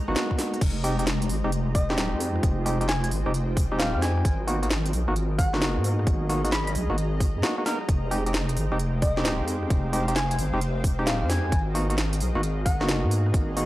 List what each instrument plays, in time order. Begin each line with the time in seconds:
Already playing: ambient pad G#3 D#5 A#5
0.08 wobble bass G#1, synth stab A#3 B3 D#4 F#4
0.16 snare, closed hi-hat
0.31 kick
0.39 snare, open hi-hat
0.54 cross-stick, closed hi-hat
0.61 wobble bass F1, analog synth pad G#3 G4 C5 D#5, ambient pad F4, kick, closed hi-hat, crash
0.84 synth stab G#3 C4 D#4 G4, open hi-hat
0.99 synth stab G#3 C4 D#4 G4, closed hi-hat
1.05 ambient pad C5, snare, closed hi-hat
1.22 closed hi-hat
1.29 wobble bass G#1, open hi-hat
1.44 wobble bass F1, synth stab G#3 C4 D#4 G4
1.52 closed hi-hat
1.65 ambient pad G5
1.75 soft synth lead D#5, kick, open hi-hat
1.90 wobble bass D#1, synth stab G#3 C4 D#4 G4, snare
1.98 snare, closed hi-hat
2.13 wobble bass F2
2.20 open hi-hat
2.36 cross-stick
2.43 wobble bass F1, kick, closed hi-hat
2.66 synth stab G#3 C4 D#4 G4, open hi-hat
2.81 synth stab G#3 C4 D#4 G4, closed hi-hat
2.89 soft synth lead G#5, snare, closed hi-hat
3.04 soft synth lead G#5, closed hi-hat
3.11 wobble bass G#1, open hi-hat
3.26 wobble bass F1, synth stab G#3 C4 D#4 G4
3.34 closed hi-hat
3.57 kick, open hi-hat
3.72 wobble bass D#1, synth stab G#3 C4 D#4 G4
3.79 soft synth lead F5, snare, closed hi-hat
3.95 wobble bass F2, soft synth lead F5
4.02 soft synth lead G#5, snare, open hi-hat
4.17 cross-stick
4.25 wobble bass G#1, analog synth pad F#3 G#4 A#4 D#5, ambient pad G#4, kick, closed hi-hat
4.47 synth stab A#3 B3 D#4 F#4, open hi-hat
4.62 synth stab A#3 B3 D#4 F#4, ambient pad D#5, closed hi-hat
4.71 snare, closed hi-hat
4.86 closed hi-hat
4.93 wobble bass B1, open hi-hat
5.08 wobble bass G#1, synth stab A#3 B3 D#4 F#4
5.16 closed hi-hat
5.39 soft synth lead F#5, kick, open hi-hat
5.53 wobble bass F#1, synth stab A#3 B3 D#4 F#4, snare
5.62 snare, closed hi-hat
5.77 wobble bass G#2
5.84 open hi-hat
5.90 ambient pad A#5
5.99 cross-stick
6.07 wobble bass G#1, kick, closed hi-hat
6.29 synth stab A#3 B3 D#4 F#4, open hi-hat
6.44 synth stab A#3 B3 D#4 F#4, closed hi-hat
6.52 soft synth lead B5, snare, closed hi-hat
6.67 soft synth lead B5, closed hi-hat
6.75 wobble bass B1, open hi-hat
6.90 wobble bass G#1, synth stab A#3 B3 D#4 F#4
6.98 closed hi-hat
7.20 kick, open hi-hat
7.36 wobble bass G#2
7.43 synth stab A#3 B3 D#4 F#4, snare, closed hi-hat
7.58 synth stab A#3 B3 D#4 F#4
7.66 synth stab A#3 B3 D#4 A#4, snare, open hi-hat
7.81 cross-stick
7.89 wobble bass F1, analog synth pad G#3 C5 G5, ambient pad F5, kick, closed hi-hat
8.11 synth stab G#3 C4 D#4 G4, open hi-hat
8.26 synth stab G#3 C4 D#4 G4, ambient pad C5, closed hi-hat
8.34 snare, closed hi-hat
8.49 closed hi-hat
8.57 wobble bass G#1, open hi-hat
8.72 wobble bass F1, synth stab G#3 C4 D#4 G4
8.79 closed hi-hat
8.86 ambient pad G5
9.02 soft synth lead D#5, kick, open hi-hat
9.17 wobble bass D#1, synth stab G#3 C4 D#4 G4, snare
9.25 snare, closed hi-hat
9.40 wobble bass F2
9.48 open hi-hat
9.63 cross-stick
9.70 wobble bass F1, kick, closed hi-hat
9.93 synth stab G#3 C4 D#4 G4, open hi-hat
10.08 synth stab G#3 C4 D#4 G4, closed hi-hat
10.16 soft synth lead G#5, snare, closed hi-hat
10.31 soft synth lead G#5, closed hi-hat
10.38 wobble bass G#1, open hi-hat
10.54 wobble bass F1, synth stab G#3 C4 D#4 G4
10.61 closed hi-hat
10.84 kick, open hi-hat
10.99 wobble bass D#1, synth stab G#3 C4 D#4 G4
11.07 soft synth lead F5, snare, closed hi-hat
11.22 wobble bass F2, soft synth lead F5
11.29 soft synth lead G#5, snare, open hi-hat
11.45 cross-stick
11.52 wobble bass G#1, analog synth pad F#4 G#4 A#4 D#5, ambient pad G#4, kick, closed hi-hat
11.75 synth stab A#3 B3 D#4 F#4, open hi-hat
11.90 synth stab A#3 B3 D#4 F#4, closed hi-hat
11.98 snare, closed hi-hat
12.03 ambient pad D#5
12.13 closed hi-hat
12.20 wobble bass B1, open hi-hat
12.35 wobble bass G#1, synth stab A#3 B3 D#4 F#4
12.43 closed hi-hat
12.66 soft synth lead F#5, kick, open hi-hat
12.81 wobble bass F#1, synth stab A#3 B3 D#4 F#4, ambient pad A#5, snare
12.89 snare, closed hi-hat
13.04 wobble bass G#2
13.11 open hi-hat
13.26 cross-stick
13.34 wobble bass G#1, kick, closed hi-hat
13.57 synth stab A#3 B3 D#4 F#4, open hi-hat